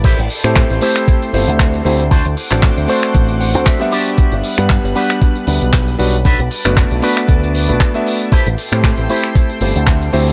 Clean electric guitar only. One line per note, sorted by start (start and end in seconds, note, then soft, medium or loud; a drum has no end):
0.04 0.19 E4 loud
0.04 0.19 G4 loud
0.04 0.19 A4 loud
0.04 0.19 C5 loud
0.30 muted clean electric guitar stroke soft
0.44 muted clean electric guitar stroke medium
0.56 muted clean electric guitar stroke soft
0.82 1.22 E4 medium
0.82 1.22 G4 medium
0.82 1.22 A4 medium
0.82 1.22 C5 medium
1.59 muted clean electric guitar stroke medium
1.74 muted clean electric guitar stroke soft
1.85 muted clean electric guitar stroke soft
2.11 2.25 D4 loud
2.11 2.25 F#4 medium
2.11 2.26 A4 loud
2.11 2.26 C5 loud
2.37 muted clean electric guitar stroke soft
2.51 muted clean electric guitar stroke medium
2.63 muted clean electric guitar stroke soft
2.88 3.29 D4 medium
2.88 3.29 F#4 medium
2.88 3.29 A4 medium
2.88 3.29 C5 medium
3.41 3.65 F#5 medium
3.66 3.91 E5 medium
3.66 muted clean electric guitar stroke medium
3.81 muted clean electric guitar stroke soft
3.92 4.35 D4 medium
3.92 4.35 F#4 medium
3.92 4.35 G4 medium
3.92 4.35 B4 loud
3.92 4.16 D5 medium
4.44 muted clean electric guitar stroke soft
4.58 muted clean electric guitar stroke medium
4.70 muted clean electric guitar stroke soft
4.95 5.36 D4 medium
4.95 5.36 F#4 medium
4.95 5.36 G4 medium
4.95 5.36 B4 medium
5.73 muted clean electric guitar stroke medium
5.87 muted clean electric guitar stroke soft
5.99 muted clean electric guitar stroke soft
6.25 6.39 D4 loud
6.25 6.39 F#4 medium
6.25 6.40 A4 loud
6.25 6.40 B4 loud
6.51 muted clean electric guitar stroke soft
6.65 muted clean electric guitar stroke medium
6.76 muted clean electric guitar stroke soft
7.03 7.43 D4 medium
7.03 7.43 F#4 medium
7.03 7.43 A4 medium
7.03 7.43 B4 loud
7.80 muted clean electric guitar stroke medium
7.94 muted clean electric guitar stroke soft
8.06 muted clean electric guitar stroke soft
8.32 8.46 E4 medium
8.32 8.46 G4 loud
8.32 8.46 A4 loud
8.32 8.47 C5 loud
8.58 muted clean electric guitar stroke soft
8.72 muted clean electric guitar stroke medium
8.84 muted clean electric guitar stroke soft
9.09 9.50 E4 medium
9.09 9.50 G4 medium
9.09 9.50 A4 medium
9.09 9.50 C5 loud
9.87 muted clean electric guitar stroke medium
10.01 muted clean electric guitar stroke soft
10.13 muted clean electric guitar stroke soft